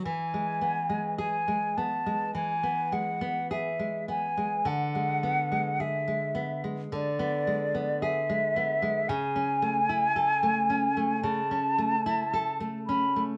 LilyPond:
<<
  \new Staff \with { instrumentName = "Flute" } { \time 4/4 \key e \major \tempo 4 = 54 gis''4 gis''8 a''8 gis''8 fis''8 e''8 gis''8 | fis''4 e''8. r16 d''4 e''4 | gis''2 a''4. b''8 | }
  \new Staff \with { instrumentName = "Nylon-string guitar" } { \time 4/4 \key e \major e16 gis16 b16 gis16 gis'16 gis16 b16 gis16 e16 b16 gis16 b16 gis'16 gis16 b16 gis16 | d16 gis16 b16 gis16 gis'16 gis16 b16 gis16 d16 b16 gis16 b16 gis'16 gis16 b16 gis16 | cis16 cis'16 a16 e'16 a'16 a16 cis'16 a16 cis16 cis'16 a16 e'16 a'16 a16 cis'16 a16 | }
>>